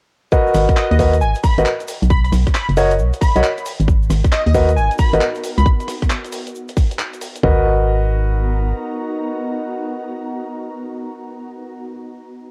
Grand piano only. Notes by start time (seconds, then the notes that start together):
0.32 F#4 A#4 B4 D#5
0.99 F#4 A#4 B4 D#5
1.58 F#4 A#4 B4 D#5
2.77 F#4 A#4 C#5 D#5
3.36 F#4 A#4 C#5 D#5
4.55 F#4 A#4 B4 D#5
5.13 F#4 A#4 B4 D#5
7.44 F#4 A#4 B4 D#5